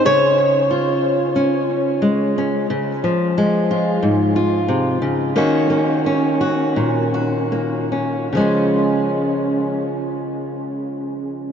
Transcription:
0.05 2.65 C#3 medium
0.05 2.69 C#5 loud
0.71 2.66 F4 soft
1.36 2.36 C#4 soft
2.02 2.65 G#3 medium
2.38 2.66 C#4 soft
2.70 3.03 C#3 medium
3.04 5.32 F3 medium
3.38 5.36 G#3 medium
3.71 4.35 F4 medium
4.03 5.32 G#2 medium
4.36 5.32 F4 medium
4.68 5.01 C3 medium
5.02 5.35 C#3 medium
5.36 8.32 D#3 medium
5.36 5.69 A#3 medium
5.36 6.05 C#4 medium
5.36 6.40 F#4 medium
5.70 7.51 A#3 medium
6.06 7.91 C#4 medium
6.41 7.13 F#4 medium
6.76 8.32 A#2 medium
7.14 8.28 F#4 medium
7.52 8.27 A#3 soft
7.92 8.27 C#4 soft
8.33 11.52 C#3 soft
8.33 11.52 F3 soft
8.37 11.52 G#3 soft
8.37 11.52 C#4 soft
8.41 11.52 F4 soft

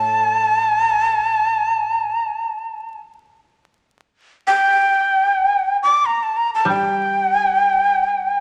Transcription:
0.00 2.00 A2 medium
0.00 2.99 A5 medium
4.47 5.77 G5 medium
5.83 6.07 D6 medium
6.05 6.24 A#5 medium
6.23 6.38 A5 medium
6.37 6.50 A#5 medium
6.54 6.68 A5 medium
6.65 8.40 G3 soft
6.65 8.40 G5 medium

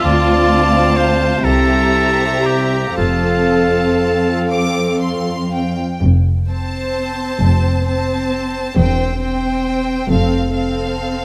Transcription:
0.00 1.40 D2 soft
0.00 1.40 C4 soft
0.00 1.44 F4 soft
0.00 1.40 F5 soft
0.04 0.92 D2 soft
0.04 0.98 D5 medium
0.04 1.40 A5 soft
0.96 1.46 C5 soft
1.44 2.97 C2 soft
1.44 2.42 C2 soft
1.44 2.95 C4 soft
1.44 2.94 G4 soft
1.44 2.47 A4 medium
1.44 2.98 E5 soft
1.44 2.98 A#5 soft
2.46 2.97 G4 soft
2.97 3.97 F1 soft
2.97 5.79 F2 soft
2.97 5.79 C4 soft
2.97 4.48 F4 soft
2.97 5.24 A4 soft
2.97 5.79 F5 soft
2.97 4.39 A5 soft
4.50 4.98 D6 soft
5.02 5.54 C6 soft
5.53 6.02 G5 soft
6.03 7.23 F1 soft
6.03 7.23 F2 soft
6.49 7.83 C4 soft
6.49 7.84 C5 soft
6.49 7.84 A5 soft
7.40 8.58 F1 soft
7.40 8.59 F2 soft
7.87 8.75 C4 soft
7.87 8.75 C5 soft
7.87 8.75 A5 soft
8.76 9.92 E1 soft
8.76 9.92 E2 soft
8.76 9.19 C4 soft
8.76 9.19 C5 soft
8.76 9.20 G5 soft
9.20 10.07 C4 soft
9.20 10.07 C5 soft
9.20 10.08 G5 soft
10.08 11.25 F1 soft
10.08 11.25 F2 soft
10.08 10.53 C4 soft
10.08 10.53 A4 soft
10.08 10.52 F5 soft
10.53 11.25 C4 soft
10.53 11.25 A4 soft
10.53 11.25 F5 soft

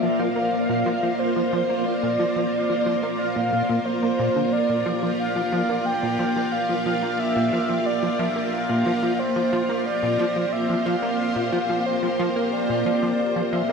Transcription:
0.00 0.09 F3 medium
0.00 13.72 A#3 medium
0.00 13.72 F4 medium
0.00 13.72 A#4 medium
0.00 4.52 C5 medium
0.00 4.56 D5 medium
0.00 0.21 E5 loud
0.19 0.29 F3 loud
0.19 1.21 F5 loud
0.36 0.51 A#3 medium
0.69 0.84 A#2 medium
0.86 0.92 F3 loud
1.03 1.13 F3 medium
1.19 1.87 C5 loud
1.36 1.42 F3 medium
1.53 1.63 F3 medium
1.70 1.84 A#3 medium
1.85 3.18 D5 loud
2.03 2.17 A#2 medium
2.19 2.25 F3 loud
2.36 2.46 F3 medium
2.69 2.75 F3 medium
2.86 2.96 F3 loud
3.03 3.17 A#3 medium
3.19 3.87 F5 loud
3.36 3.51 A#2 medium
3.53 3.62 A#2 medium
3.69 3.79 A#2 loud
3.85 4.54 C5 loud
4.03 4.12 A#3 medium
4.19 4.29 A#2 loud
4.36 4.46 D3 medium
4.52 13.72 G4 medium
4.52 5.18 D5 loud
4.52 9.85 D5 medium
4.69 4.84 A#2 medium
4.86 4.92 F3 loud
5.03 5.12 F3 medium
5.19 5.87 F5 loud
5.36 5.42 F3 medium
5.52 5.62 F3 loud
5.69 5.84 A#3 medium
5.86 6.53 G5 loud
6.03 6.17 A#2 medium
6.19 6.25 F3 loud
6.36 6.46 F3 medium
6.52 6.85 F5 loud
6.69 6.75 F3 medium
6.86 6.96 F3 loud
6.86 7.21 F5 loud
7.02 7.17 A#3 medium
7.19 7.87 E5 loud
7.36 7.51 A#2 medium
7.53 7.58 F3 loud
7.69 7.79 F3 medium
7.86 8.21 D5 loud
8.03 8.08 F3 medium
8.19 8.29 F3 loud
8.19 8.54 E5 loud
8.36 8.51 A#3 medium
8.53 9.21 F5 loud
8.69 8.84 A#2 medium
8.86 8.92 F3 loud
9.03 9.12 F3 medium
9.19 9.85 C5 loud
9.36 9.42 F3 medium
9.53 9.62 F3 loud
9.69 9.84 A#3 medium
9.86 13.72 C5 medium
9.86 10.54 D5 loud
10.03 10.17 A#2 medium
10.19 10.25 F3 loud
10.36 10.46 F3 medium
10.52 10.87 E5 loud
10.69 10.75 F3 medium
10.86 10.96 F3 loud
10.86 11.87 F5 loud
11.02 11.17 A#3 medium
11.36 11.51 A#2 medium
11.52 11.58 F3 loud
11.69 11.79 F3 medium
11.86 12.54 C5 medium
12.03 12.09 F3 medium
12.19 12.29 F3 loud
12.36 12.51 A#3 medium
12.53 12.85 D5 loud
12.69 12.84 A#2 medium
12.86 12.92 F3 loud
12.86 13.54 D5 medium
13.03 13.12 F3 medium
13.36 13.42 F3 medium
13.53 13.62 F3 loud
13.53 13.72 E5 loud
13.69 13.72 A#3 medium

